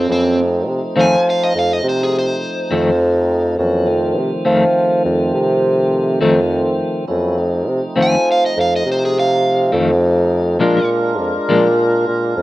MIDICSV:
0, 0, Header, 1, 5, 480
1, 0, Start_track
1, 0, Tempo, 584795
1, 80, Time_signature, 12, 3, 24, 8
1, 10195, End_track
2, 0, Start_track
2, 0, Title_t, "Overdriven electric guitar"
2, 0, Program_c, 0, 29
2, 0, Note_on_c, 0, 60, 66
2, 88, Note_off_c, 0, 60, 0
2, 99, Note_on_c, 0, 60, 73
2, 322, Note_off_c, 0, 60, 0
2, 825, Note_on_c, 0, 80, 83
2, 1044, Note_off_c, 0, 80, 0
2, 1067, Note_on_c, 0, 77, 68
2, 1169, Note_off_c, 0, 77, 0
2, 1178, Note_on_c, 0, 75, 70
2, 1284, Note_off_c, 0, 75, 0
2, 1303, Note_on_c, 0, 77, 68
2, 1407, Note_off_c, 0, 77, 0
2, 1421, Note_on_c, 0, 75, 66
2, 1525, Note_off_c, 0, 75, 0
2, 1552, Note_on_c, 0, 72, 70
2, 1651, Note_off_c, 0, 72, 0
2, 1669, Note_on_c, 0, 68, 74
2, 1769, Note_off_c, 0, 68, 0
2, 1794, Note_on_c, 0, 72, 76
2, 3177, Note_off_c, 0, 72, 0
2, 6586, Note_on_c, 0, 80, 82
2, 6799, Note_off_c, 0, 80, 0
2, 6826, Note_on_c, 0, 77, 59
2, 6922, Note_off_c, 0, 77, 0
2, 6944, Note_on_c, 0, 75, 64
2, 7041, Note_off_c, 0, 75, 0
2, 7065, Note_on_c, 0, 77, 70
2, 7162, Note_off_c, 0, 77, 0
2, 7192, Note_on_c, 0, 75, 68
2, 7286, Note_off_c, 0, 75, 0
2, 7318, Note_on_c, 0, 72, 61
2, 7409, Note_off_c, 0, 72, 0
2, 7428, Note_on_c, 0, 68, 62
2, 7524, Note_off_c, 0, 68, 0
2, 7546, Note_on_c, 0, 77, 74
2, 8937, Note_off_c, 0, 77, 0
2, 10195, End_track
3, 0, Start_track
3, 0, Title_t, "Tonewheel organ"
3, 0, Program_c, 1, 16
3, 67, Note_on_c, 1, 61, 61
3, 68, Note_on_c, 1, 54, 56
3, 71, Note_on_c, 1, 64, 51
3, 72, Note_on_c, 1, 58, 54
3, 297, Note_on_c, 1, 60, 57
3, 303, Note_on_c, 1, 57, 64
3, 303, Note_on_c, 1, 63, 58
3, 304, Note_on_c, 1, 53, 61
3, 313, Note_off_c, 1, 61, 0
3, 314, Note_off_c, 1, 54, 0
3, 315, Note_off_c, 1, 64, 0
3, 316, Note_off_c, 1, 58, 0
3, 2914, Note_off_c, 1, 60, 0
3, 2917, Note_off_c, 1, 53, 0
3, 2917, Note_off_c, 1, 57, 0
3, 2917, Note_off_c, 1, 63, 0
3, 2937, Note_on_c, 1, 54, 50
3, 2941, Note_on_c, 1, 52, 55
3, 2945, Note_on_c, 1, 58, 55
3, 2945, Note_on_c, 1, 61, 57
3, 3169, Note_on_c, 1, 57, 59
3, 3174, Note_on_c, 1, 53, 57
3, 3175, Note_on_c, 1, 60, 59
3, 3179, Note_on_c, 1, 51, 62
3, 3183, Note_off_c, 1, 54, 0
3, 3186, Note_off_c, 1, 52, 0
3, 3187, Note_off_c, 1, 58, 0
3, 3188, Note_off_c, 1, 61, 0
3, 5788, Note_off_c, 1, 57, 0
3, 5790, Note_off_c, 1, 53, 0
3, 5791, Note_off_c, 1, 60, 0
3, 5793, Note_off_c, 1, 51, 0
3, 5808, Note_on_c, 1, 64, 52
3, 5811, Note_on_c, 1, 61, 53
3, 5813, Note_on_c, 1, 58, 52
3, 5814, Note_on_c, 1, 54, 57
3, 6056, Note_on_c, 1, 57, 65
3, 6057, Note_off_c, 1, 64, 0
3, 6058, Note_off_c, 1, 61, 0
3, 6059, Note_off_c, 1, 54, 0
3, 6059, Note_off_c, 1, 58, 0
3, 6059, Note_on_c, 1, 60, 60
3, 6060, Note_on_c, 1, 63, 65
3, 6061, Note_on_c, 1, 53, 64
3, 8677, Note_off_c, 1, 57, 0
3, 8679, Note_off_c, 1, 60, 0
3, 8679, Note_off_c, 1, 63, 0
3, 8680, Note_off_c, 1, 53, 0
3, 8705, Note_on_c, 1, 70, 60
3, 8707, Note_on_c, 1, 62, 56
3, 8710, Note_on_c, 1, 65, 55
3, 8711, Note_on_c, 1, 56, 61
3, 10195, Note_off_c, 1, 56, 0
3, 10195, Note_off_c, 1, 62, 0
3, 10195, Note_off_c, 1, 65, 0
3, 10195, Note_off_c, 1, 70, 0
3, 10195, End_track
4, 0, Start_track
4, 0, Title_t, "Clean electric guitar"
4, 0, Program_c, 2, 27
4, 785, Note_on_c, 2, 60, 61
4, 792, Note_on_c, 2, 51, 57
4, 793, Note_on_c, 2, 57, 53
4, 799, Note_on_c, 2, 41, 51
4, 936, Note_off_c, 2, 60, 0
4, 939, Note_off_c, 2, 51, 0
4, 939, Note_off_c, 2, 57, 0
4, 943, Note_off_c, 2, 41, 0
4, 2222, Note_on_c, 2, 60, 65
4, 2230, Note_on_c, 2, 57, 64
4, 2232, Note_on_c, 2, 51, 49
4, 2239, Note_on_c, 2, 41, 50
4, 2371, Note_off_c, 2, 60, 0
4, 2376, Note_off_c, 2, 51, 0
4, 2376, Note_off_c, 2, 57, 0
4, 2380, Note_off_c, 2, 41, 0
4, 3652, Note_on_c, 2, 60, 59
4, 3654, Note_on_c, 2, 57, 72
4, 3659, Note_on_c, 2, 51, 60
4, 3667, Note_on_c, 2, 41, 52
4, 3804, Note_off_c, 2, 60, 0
4, 3805, Note_off_c, 2, 57, 0
4, 3808, Note_off_c, 2, 51, 0
4, 3812, Note_off_c, 2, 41, 0
4, 5095, Note_on_c, 2, 60, 66
4, 5100, Note_on_c, 2, 57, 68
4, 5104, Note_on_c, 2, 51, 64
4, 5108, Note_on_c, 2, 41, 54
4, 5244, Note_off_c, 2, 60, 0
4, 5247, Note_off_c, 2, 57, 0
4, 5249, Note_off_c, 2, 51, 0
4, 5251, Note_off_c, 2, 41, 0
4, 6531, Note_on_c, 2, 60, 49
4, 6538, Note_on_c, 2, 57, 52
4, 6544, Note_on_c, 2, 41, 53
4, 6545, Note_on_c, 2, 51, 55
4, 6682, Note_off_c, 2, 60, 0
4, 6685, Note_off_c, 2, 57, 0
4, 6688, Note_off_c, 2, 41, 0
4, 6689, Note_off_c, 2, 51, 0
4, 7980, Note_on_c, 2, 60, 60
4, 7983, Note_on_c, 2, 57, 52
4, 7987, Note_on_c, 2, 51, 55
4, 7990, Note_on_c, 2, 41, 52
4, 8127, Note_off_c, 2, 60, 0
4, 8129, Note_off_c, 2, 57, 0
4, 8131, Note_off_c, 2, 51, 0
4, 8133, Note_off_c, 2, 41, 0
4, 8696, Note_on_c, 2, 46, 62
4, 8700, Note_on_c, 2, 53, 64
4, 8706, Note_on_c, 2, 56, 77
4, 8707, Note_on_c, 2, 62, 77
4, 8847, Note_off_c, 2, 46, 0
4, 8849, Note_off_c, 2, 53, 0
4, 8852, Note_off_c, 2, 56, 0
4, 8852, Note_off_c, 2, 62, 0
4, 9430, Note_on_c, 2, 62, 68
4, 9436, Note_on_c, 2, 53, 54
4, 9436, Note_on_c, 2, 56, 66
4, 9438, Note_on_c, 2, 46, 53
4, 9575, Note_off_c, 2, 62, 0
4, 9578, Note_off_c, 2, 53, 0
4, 9578, Note_off_c, 2, 56, 0
4, 9580, Note_off_c, 2, 46, 0
4, 10195, End_track
5, 0, Start_track
5, 0, Title_t, "Bassoon"
5, 0, Program_c, 3, 70
5, 74, Note_on_c, 3, 41, 83
5, 552, Note_on_c, 3, 48, 69
5, 564, Note_off_c, 3, 41, 0
5, 665, Note_off_c, 3, 48, 0
5, 797, Note_on_c, 3, 53, 95
5, 1243, Note_off_c, 3, 53, 0
5, 1274, Note_on_c, 3, 41, 80
5, 1495, Note_off_c, 3, 41, 0
5, 1507, Note_on_c, 3, 48, 75
5, 1977, Note_off_c, 3, 48, 0
5, 2230, Note_on_c, 3, 41, 100
5, 2917, Note_off_c, 3, 41, 0
5, 2948, Note_on_c, 3, 41, 86
5, 3426, Note_on_c, 3, 48, 71
5, 3439, Note_off_c, 3, 41, 0
5, 3538, Note_off_c, 3, 48, 0
5, 3661, Note_on_c, 3, 53, 94
5, 4111, Note_off_c, 3, 53, 0
5, 4146, Note_on_c, 3, 41, 76
5, 4367, Note_off_c, 3, 41, 0
5, 4385, Note_on_c, 3, 48, 82
5, 5072, Note_off_c, 3, 48, 0
5, 5101, Note_on_c, 3, 41, 87
5, 5570, Note_off_c, 3, 41, 0
5, 5829, Note_on_c, 3, 41, 80
5, 6306, Note_on_c, 3, 48, 72
5, 6318, Note_off_c, 3, 41, 0
5, 6416, Note_off_c, 3, 48, 0
5, 6541, Note_on_c, 3, 53, 85
5, 6990, Note_off_c, 3, 53, 0
5, 7033, Note_on_c, 3, 41, 73
5, 7250, Note_off_c, 3, 41, 0
5, 7272, Note_on_c, 3, 48, 81
5, 7957, Note_off_c, 3, 48, 0
5, 7988, Note_on_c, 3, 41, 96
5, 8676, Note_off_c, 3, 41, 0
5, 8712, Note_on_c, 3, 46, 77
5, 9187, Note_on_c, 3, 41, 64
5, 9199, Note_off_c, 3, 46, 0
5, 9299, Note_off_c, 3, 41, 0
5, 9432, Note_on_c, 3, 46, 97
5, 9882, Note_off_c, 3, 46, 0
5, 9913, Note_on_c, 3, 46, 71
5, 10135, Note_off_c, 3, 46, 0
5, 10154, Note_on_c, 3, 41, 78
5, 10195, Note_off_c, 3, 41, 0
5, 10195, End_track
0, 0, End_of_file